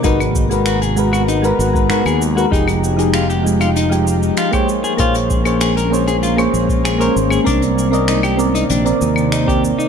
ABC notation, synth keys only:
X:1
M:4/4
L:1/16
Q:1/4=97
K:Fm
V:1 name="Synth keys"
[A,_GB_c]3 [A,GBc]2 z [A,GBc]3 [A,GBc]2 [A,GBc] [A,GBc] z2 [A,GBc] | [F,EGA]3 [F,EGA]2 z [F,A,EG]3 [F,A,EG]4 [B,Acd]3 | [B,Acd]3 [B,Acd]2 z [B,Acd]3 [B,Acd]4 [B,Acd]3 | [CB=d]3 [CBde]2 z [CBd]3 [CBd]4 [CBd]3 |]